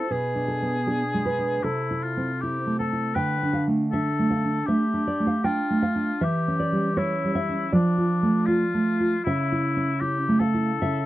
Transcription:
Already playing: nylon-string guitar E4 C5, oboe A4
0.10 nylon-string guitar B2 B4, oboe G#4
0.35 nylon-string guitar D4
0.48 nylon-string guitar A4
0.62 nylon-string guitar B3
0.87 nylon-string guitar D4 G#4
1.14 nylon-string guitar G#3
1.25 nylon-string guitar B4
1.39 nylon-string guitar D4
1.63 nylon-string guitar C3 A4, oboe E4
1.91 nylon-string guitar E4
2.03 oboe F4
2.17 nylon-string guitar C4
2.41 nylon-string guitar E4, oboe G4
2.67 nylon-string guitar A3
2.79 oboe A4, nylon-string guitar A5
2.93 nylon-string guitar E4
3.15 nylon-string guitar D3 G5, oboe B4
3.43 nylon-string guitar D4
3.53 nylon-string guitar F5
3.67 nylon-string guitar A3
3.91 nylon-string guitar D4 E5, oboe A4
4.19 nylon-string guitar A3
4.30 nylon-string guitar F5
4.44 nylon-string guitar D4
4.66 nylon-string guitar A3 E5, oboe G4
4.94 nylon-string guitar D4
5.07 nylon-string guitar D5
5.20 nylon-string guitar A3
5.27 nylon-string guitar F5
5.44 nylon-string guitar D4 G5, oboe F4
5.70 nylon-string guitar A3
5.82 nylon-string guitar F5
5.96 nylon-string guitar D4
6.21 nylon-string guitar E3 E5, oboe G4
6.48 nylon-string guitar C#4
6.59 nylon-string guitar D5
6.72 nylon-string guitar G3
6.97 nylon-string guitar C#4 C#5, oboe E4
7.24 nylon-string guitar G3
7.35 nylon-string guitar E5
7.49 nylon-string guitar C#4
7.72 nylon-string guitar F3 D5, oboe D4
7.98 nylon-string guitar F4
8.23 nylon-string guitar A3
8.46 oboe F4, nylon-string guitar F4
8.74 nylon-string guitar A3
9.00 nylon-string guitar F4
9.24 nylon-string guitar C#3 E5, oboe E4
9.52 nylon-string guitar E4
9.77 nylon-string guitar C#4
10.00 nylon-string guitar E4, oboe G4
10.28 nylon-string guitar A3
10.40 oboe A4, nylon-string guitar F5
10.54 nylon-string guitar E4
10.82 nylon-string guitar C#3 E5

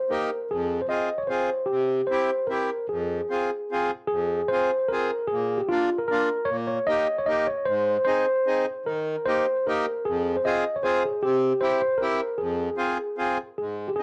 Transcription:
Already playing: tine electric piano C5
0.10 accordion A#3 D#4 G4, tine electric piano A#4
0.51 accordion F2, tine electric piano G#4
0.82 tine electric piano C5
0.88 accordion C4 F4 G#4, tine electric piano D#5
1.18 tine electric piano C#5
1.27 accordion C4 F4 G#4, tine electric piano C5
1.66 tine electric piano G4
1.71 accordion C3
2.07 accordion C4 E4, tine electric piano C5
2.12 accordion G4
2.47 accordion C4 E4, tine electric piano A#4
2.51 accordion G4
2.89 accordion F2, tine electric piano G#4
3.30 accordion C4 F4 G#4
3.71 accordion C4 F4 G#4
4.07 accordion F2, tine electric piano G#4
4.48 accordion C4 F4, tine electric piano C5
4.52 accordion G#4
4.88 accordion C4 F4 G#4, tine electric piano A#4
5.28 tine electric piano G#4
5.32 accordion A#2
5.58 tine electric piano G4
5.69 accordion A#3 D4 F4, tine electric piano F4
5.98 tine electric piano A#4
6.08 accordion A#3 D4 F4, tine electric piano A#4
6.45 tine electric piano C#5
6.49 accordion A#2
6.67 tine electric piano C#5
6.87 accordion A#3 D#4 G4, tine electric piano D#5
7.18 tine electric piano C#5
7.26 accordion A#3 D#4 G4, tine electric piano D#5
7.47 tine electric piano C#5
7.65 accordion G#2, tine electric piano C5
8.05 accordion C4 D#4 G#4, tine electric piano C5
8.46 accordion C4 D#4 G#4
8.86 accordion D#3, tine electric piano A#4
9.26 accordion A#3 D#4 G4, tine electric piano C5
9.67 accordion A#3 D#4 G4, tine electric piano A#4
10.05 accordion F2, tine electric piano G#4
10.37 tine electric piano C5
10.45 accordion C4 F4 G#4, tine electric piano D#5
10.76 tine electric piano C#5
10.83 accordion C4 F4 G#4, tine electric piano C5
11.05 tine electric piano G#4
11.23 accordion C3, tine electric piano G4
11.61 accordion C4 E4 G4, tine electric piano C5
11.82 tine electric piano C5
11.98 accordion C4, tine electric piano A#4
12.02 accordion E4 G4
12.38 accordion F2, tine electric piano G#4
12.77 accordion C4 F4 G#4
13.18 accordion C4 F4 G#4
13.58 accordion G#2, tine electric piano G#4
13.88 tine electric piano G4
13.96 accordion C4 D#4, tine electric piano G#4

